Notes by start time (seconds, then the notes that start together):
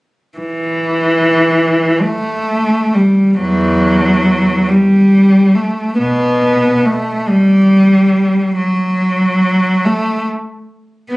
0.38 E3
2.00 A3
2.94 G3
3.38 E2 F#3
4.69 G3
5.55 A3
5.97 B2 B3
6.85 A3
7.28 G3
8.56 F#3
9.85 A3
11.11 B3